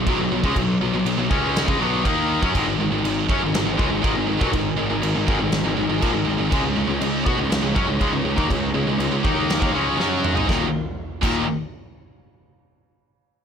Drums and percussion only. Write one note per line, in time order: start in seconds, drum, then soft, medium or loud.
0.07 kick loud
0.07 crash medium
0.44 kick loud
0.56 kick loud
0.56 crash medium
1.06 crash medium
1.31 kick loud
1.56 snare loud
1.56 crash medium
1.68 kick loud
2.05 kick loud
2.05 crash medium
2.43 kick loud
2.55 kick loud
2.55 crash medium
3.05 crash medium
3.29 kick loud
3.54 snare loud
3.54 crash medium
3.79 kick loud
4.04 kick loud
4.04 crash medium
4.41 kick loud
4.53 kick loud
4.53 crash medium
5.03 crash medium
5.28 kick loud
5.52 snare loud
5.52 crash medium
6.02 kick medium
6.02 crash medium
6.52 kick loud
6.52 crash medium
7.01 crash medium
7.26 kick loud
7.52 snare loud
7.52 crash medium
7.76 kick loud
8.01 kick loud
8.01 crash medium
8.38 kick loud
8.50 kick loud
8.50 crash medium
9.00 crash medium
9.25 kick loud
9.50 snare loud
9.50 crash medium
9.62 kick loud
10.00 snare medium
10.24 mid tom loud
10.37 floor tom medium
10.49 kick loud
10.49 snare medium
11.23 kick loud
11.23 crash medium